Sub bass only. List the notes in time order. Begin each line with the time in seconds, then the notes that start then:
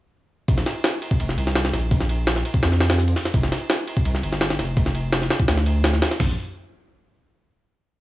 0.48 A#1
1.20 F1
1.37 C2
1.73 A#1
2.62 F2
3.34 F1
4.05 C2
4.23 G1
4.59 F1
5.48 D2
6.20 A#1